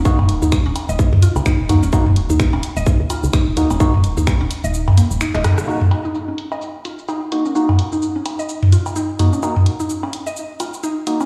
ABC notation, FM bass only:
X:1
M:4/4
L:1/16
Q:"Swing 16ths" 1/4=128
K:Ebm
V:1 name="FM bass" clef=bass
z E,,, E,,, E,, z E,,, z E,,, z E,, z D,, z E,,, E,, E,,, | z E,,, E,,, E,, z E,,, z E,,, z E,, z D,, z E,,, E,, E,,, | z E,,, E,,, E,, z E,,, z E,,,2 E,, z E,,, z E,,, z2 | z16 |
z16 | z16 |]